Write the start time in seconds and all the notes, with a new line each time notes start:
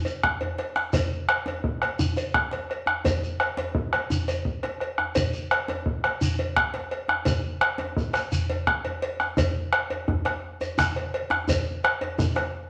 0.05 cowbell, djembe bass, shekere
0.23 bombo rim, bombo low, djembe bass
0.41 cowbell, djembe bass
0.58 bombo rim, cowbell, djembe slap
0.76 bombo rim, djembe slap
0.93 bombo low, cowbell, djembe bass, shekere
1.28 bombo rim, cowbell, djembe slap
1.46 cowbell, djembe slap, djembe tone
1.64 bombo low
1.82 bombo rim, cowbell
1.99 djembe bass, shekere
2.16 cowbell, djembe slap, djembe tone, shekere
2.34 bombo rim, bombo low, djembe slap
2.51 bombo rim, cowbell, djembe slap
2.70 bombo rim, cowbell
2.86 bombo rim, djembe tone
3.05 bombo low, cowbell, djembe bass, shekere
3.24 shekere
3.39 bombo rim, cowbell, djembe slap
3.57 cowbell, djembe slap, djembe tone
3.75 bombo low
3.93 bombo rim, cowbell
4.10 djembe bass, shekere
4.28 cowbell, djembe slap, djembe tone, shekere
4.45 bombo low, djembe slap
4.63 bombo rim, cowbell, djembe slap
4.80 bombo rim, cowbell
4.98 bombo rim, djembe tone
5.15 bombo low, cowbell, djembe bass, shekere
5.33 shekere
5.51 bombo rim, cowbell, djembe slap
5.68 cowbell, djembe slap, djembe tone
5.86 bombo low
6.04 bombo rim, cowbell
6.21 djembe bass, shekere
6.39 cowbell, djembe slap, djembe tone
6.56 bombo rim, bombo low, djembe slap
6.74 bombo rim, cowbell, djembe slap
6.91 bombo rim, cowbell
7.08 bombo rim, djembe tone
7.25 bombo rim, bombo low, cowbell, djembe bass, shekere
7.43 djembe slap
7.61 bombo rim, cowbell
7.78 cowbell, djembe slap, djembe tone
7.97 bombo low, shekere
8.13 bombo rim, cowbell, djembe slap, shekere
8.32 djembe slap, djembe bass, shekere
8.50 cowbell, djembe tone
8.67 bombo rim, bombo low
8.84 bombo rim, cowbell, djembe bass
9.02 cowbell, djembe slap
9.20 bombo rim, djembe slap
9.37 bombo low, cowbell, djembe bass, shekere
9.55 djembe slap
9.73 bombo rim, cowbell, djembe slap
9.90 cowbell, djembe tone
10.08 bombo rim, bombo low, djembe bass
10.25 bombo rim, cowbell, djembe slap
10.61 cowbell, djembe slap, djembe tone, shekere
10.78 bombo rim, bombo low, djembe bass, shekere
10.96 bombo rim, cowbell
11.13 bombo rim, cowbell, djembe slap
11.30 bombo rim, djembe slap, djembe tone
11.48 bombo low, cowbell, djembe bass, shekere
11.66 djembe slap
11.83 bombo rim, cowbell, djembe slap
12.01 cowbell, djembe tone
12.18 bombo rim, bombo low, djembe bass, shekere
12.36 bombo rim, cowbell, djembe slap